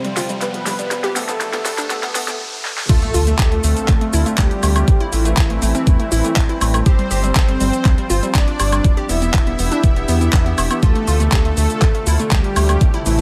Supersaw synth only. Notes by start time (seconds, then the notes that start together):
Already playing: C4 C5
0.42 B3 B4
1.16 A3 A4
2.89 A3 A4
3.39 A3 A4
4.38 G3 G4
5.12 E3 E4
6.86 C4 C5
7.36 C4 C5
8.35 D4 D5
9.09 E4 E5
10.83 A3 A4
11.32 A3 A4
12.31 G3 G4
13.06 E3 E4